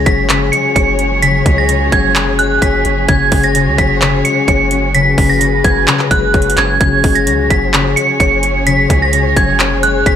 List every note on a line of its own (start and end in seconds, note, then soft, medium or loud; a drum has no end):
0.00 0.29 C#3 medium
0.00 3.05 F#3 medium
0.00 0.51 G#3 medium
0.00 10.16 F#4 medium
0.00 6.77 G#4 medium
0.00 3.05 C#5 medium
0.06 0.51 F#1 loud
0.06 0.34 F#3 medium
0.06 0.24 B6 medium
0.06 kick loud
0.06 closed hi-hat medium
0.29 1.21 C#3 medium
0.29 clap loud
0.29 closed hi-hat medium
0.52 1.44 G#3 medium
0.52 0.70 C#7 medium
0.52 closed hi-hat medium
0.76 1.43 F#1 loud
0.76 2.61 C#5 medium
0.76 1.19 C#7 medium
0.76 kick medium
0.76 closed hi-hat medium
0.99 2.85 C#4 medium
0.99 closed hi-hat medium
1.22 1.67 C#3 loud
1.22 1.55 B6 loud
1.22 closed hi-hat medium
1.45 1.90 C#2 loud
1.45 2.37 G#3 medium
1.45 kick loud
1.45 closed hi-hat medium
1.58 1.91 A#6 medium
1.69 2.14 C#3 medium
1.69 closed hi-hat medium
1.92 2.59 F#1 loud
1.92 2.21 F#3 medium
1.92 2.11 G#6 medium
1.92 kick medium
1.92 closed hi-hat medium
2.15 3.07 C#3 medium
2.15 clap loud
2.15 closed hi-hat medium
2.39 3.14 G#3 medium
2.39 2.57 F#6 medium
2.39 closed hi-hat medium
2.61 2.84 F#1 loud
2.61 4.47 C#5 medium
2.61 3.06 B6 medium
2.61 kick medium
2.61 closed hi-hat medium
2.85 3.08 F#1 loud
2.85 4.71 C#4 medium
2.85 closed hi-hat medium
3.08 3.31 F#1 loud
3.08 3.54 C#3 loud
3.08 10.16 F#3 medium
3.08 4.93 C#5 medium
3.08 3.41 G#6 medium
3.08 kick loud
3.08 closed hi-hat medium
3.32 3.68 F#1 loud
3.32 4.24 G#3 medium
3.32 kick loud
3.32 closed hi-hat medium
3.32 open hi-hat medium
3.43 3.76 A#6 medium
3.43 closed hi-hat soft
3.55 4.01 C#3 medium
3.55 closed hi-hat medium
3.67 3.78 C#2 loud
3.78 4.23 F#1 loud
3.78 4.07 F#3 medium
3.78 3.96 B6 medium
3.78 kick loud
3.78 closed hi-hat medium
4.02 4.94 C#3 loud
4.02 clap loud
4.02 closed hi-hat medium
4.25 5.16 G#3 medium
4.25 4.43 C#7 medium
4.25 closed hi-hat medium
4.48 5.15 F#1 loud
4.48 6.33 C#5 medium
4.48 4.92 C#7 medium
4.48 kick medium
4.48 closed hi-hat medium
4.71 6.56 C#4 medium
4.71 closed hi-hat medium
4.95 5.39 C#3 medium
4.95 6.79 B4 medium
4.95 5.27 B6 loud
4.95 closed hi-hat medium
5.17 5.63 F#1 loud
5.17 6.10 G#3 medium
5.17 kick loud
5.17 open hi-hat medium
5.30 5.62 A#6 medium
5.41 5.87 C#3 medium
5.41 closed hi-hat medium
5.64 5.87 F#1 loud
5.64 5.93 F#3 medium
5.64 5.82 G#6 medium
5.64 kick loud
5.64 closed hi-hat medium
5.88 6.79 C#3 medium
5.88 clap loud
5.88 closed hi-hat medium
5.99 clap medium
6.11 6.33 F#1 loud
6.11 6.86 G#3 medium
6.11 6.55 F#6 medium
6.11 kick medium
6.11 closed hi-hat medium
6.34 6.56 F#1 loud
6.34 8.20 C#5 loud
6.34 kick medium
6.34 closed hi-hat soft
6.42 closed hi-hat medium
6.50 closed hi-hat medium
6.57 6.80 F#1 loud
6.57 8.44 C#4 medium
6.57 6.76 G#6 loud
6.57 clap loud
6.57 closed hi-hat medium
6.80 7.03 F#1 loud
6.80 7.26 C#3 loud
6.80 10.16 G#4 medium
6.80 10.16 C#5 medium
6.80 7.13 G#6 loud
6.80 kick loud
6.80 closed hi-hat medium
7.04 7.29 F#1 loud
7.04 7.95 G#3 medium
7.04 kick loud
7.04 closed hi-hat medium
7.04 open hi-hat medium
7.15 7.48 A#6 medium
7.15 closed hi-hat medium
7.27 7.49 C#2 loud
7.27 7.73 C#3 medium
7.27 closed hi-hat medium
7.50 7.95 F#1 loud
7.50 7.79 F#3 medium
7.50 7.68 B6 medium
7.50 kick loud
7.50 closed hi-hat medium
7.74 8.65 C#3 medium
7.74 clap loud
7.74 closed hi-hat medium
7.96 8.89 G#3 medium
7.96 8.14 C#7 medium
7.96 closed hi-hat medium
8.20 8.87 F#1 loud
8.20 10.05 C#5 loud
8.20 8.64 C#7 medium
8.20 kick loud
8.20 closed hi-hat medium
8.43 10.16 C#4 medium
8.43 closed hi-hat medium
8.66 9.12 C#3 loud
8.66 8.99 B6 loud
8.66 closed hi-hat medium
8.90 9.35 C#2 loud
8.90 9.82 G#3 medium
8.90 kick loud
8.90 closed hi-hat medium
9.02 9.35 A#6 medium
9.13 9.58 C#3 medium
9.13 closed hi-hat loud
9.37 10.03 F#1 loud
9.37 9.65 F#3 medium
9.37 9.55 G#6 medium
9.37 kick loud
9.37 closed hi-hat medium
9.60 10.16 C#3 medium
9.60 clap loud
9.60 closed hi-hat medium
9.83 10.16 G#3 medium
9.83 10.01 F#6 medium
9.83 closed hi-hat medium
10.05 10.16 F#1 loud
10.05 10.16 C#5 medium
10.05 10.16 B6 medium
10.05 kick loud
10.05 closed hi-hat medium